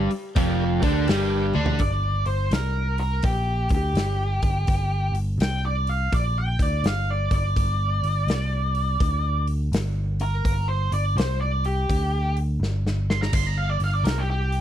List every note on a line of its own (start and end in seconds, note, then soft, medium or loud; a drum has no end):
0.00 0.11 G3 loud
0.11 open hi-hat medium
0.35 0.79 F1 loud
0.35 0.82 F2 medium
0.35 0.82 F3 medium
0.35 0.64 G4 medium
0.35 0.65 A#4 medium
0.35 0.65 D5 medium
0.35 0.65 G5 medium
0.35 kick loud
0.35 open hi-hat medium
0.80 1.06 D2 medium
0.80 1.07 D3 medium
0.80 1.08 D4 medium
0.80 1.46 G4 medium
0.80 1.46 A#4 medium
0.80 1.47 D5 medium
0.80 1.47 G5 medium
0.80 kick loud
0.80 open hi-hat medium
1.08 1.52 G1 medium
1.08 1.54 G2 medium
1.08 1.54 G3 medium
1.08 snare loud
1.08 open hi-hat medium
1.54 1.78 D2 medium
1.54 1.79 D3 medium
1.54 1.80 D4 medium
1.54 high tom medium
1.66 floor tom medium
1.79 2.23 G1 medium
1.79 2.26 D5 loud
1.79 kick medium
1.79 open hi-hat medium
2.26 2.50 G1 medium
2.26 2.51 C5 medium
2.26 open hi-hat medium
2.51 3.20 C2 medium
2.51 2.98 A#4 medium
2.51 snare loud
2.51 open hi-hat medium
2.98 3.24 A#4 medium
2.98 open hi-hat medium
3.23 3.67 A#1 medium
3.23 3.70 G4 medium
3.23 kick loud
3.23 open hi-hat medium
3.69 3.94 D2 medium
3.69 kick loud
3.69 open hi-hat medium
3.74 5.13 G4 medium
3.94 4.39 G1 medium
3.94 snare loud
3.94 open hi-hat medium
4.42 4.66 G1 medium
4.42 kick medium
4.42 open hi-hat medium
4.67 5.11 G1 medium
4.67 kick loud
4.67 open hi-hat medium
5.12 5.37 G1 medium
5.12 open hi-hat medium
5.38 6.07 C2 medium
5.38 5.64 G5 loud
5.38 open hi-hat medium
5.42 snare loud
5.65 5.88 D5 medium
5.87 6.12 F5 medium
5.87 open hi-hat medium
6.12 6.56 A#1 medium
6.12 6.37 D5 medium
6.12 kick loud
6.12 open hi-hat medium
6.38 6.61 G5 medium
6.59 6.83 D2 medium
6.59 6.85 D5 medium
6.59 kick loud
6.59 open hi-hat medium
6.84 7.28 G1 medium
6.84 7.09 F5 medium
6.84 snare loud
6.84 open hi-hat medium
7.11 7.33 D5 medium
7.31 7.55 G1 medium
7.31 9.46 D5 loud
7.31 kick loud
7.31 open hi-hat medium
7.56 8.00 G1 medium
7.56 kick loud
7.56 open hi-hat medium
8.03 8.27 G1 medium
8.03 open hi-hat medium
8.27 8.96 C2 loud
8.27 snare loud
8.27 open hi-hat medium
8.75 open hi-hat medium
9.00 9.69 D2 medium
9.00 kick loud
9.00 open hi-hat medium
9.47 open hi-hat medium
9.72 10.40 G1 medium
9.72 snare loud
9.72 open hi-hat medium
10.20 10.68 A#4 loud
10.20 open hi-hat medium
10.45 10.88 G1 medium
10.45 kick medium
10.45 open hi-hat medium
10.68 10.92 C5 medium
10.92 11.15 G1 medium
10.92 11.17 D5 medium
10.92 open hi-hat medium
11.16 11.84 C2 medium
11.16 11.40 C5 loud
11.16 snare loud
11.16 open hi-hat medium
11.41 11.64 D5 medium
11.64 12.35 G4 loud
11.64 open hi-hat medium
11.89 12.57 D2 medium
11.89 kick loud
11.89 open hi-hat medium
12.37 open hi-hat medium
12.60 13.28 G1 medium
12.60 snare medium
12.87 snare medium
13.10 13.22 C6 loud
13.10 snare medium
13.22 13.32 A#5 medium
13.22 snare medium
13.33 13.76 G1 medium
13.33 13.47 C6 medium
13.33 kick loud
13.33 open hi-hat medium
13.33 crash medium
13.47 13.56 A#5 medium
13.58 13.70 F5 medium
13.70 13.76 D5 medium
13.80 14.03 G1 medium
13.80 open hi-hat medium
13.84 13.93 F5 medium
13.93 14.03 D5 medium
14.04 14.61 C2 medium
14.04 14.20 A#4 medium
14.04 snare loud
14.04 open hi-hat medium
14.18 14.27 G4 medium
14.30 14.61 G4 medium
14.52 open hi-hat medium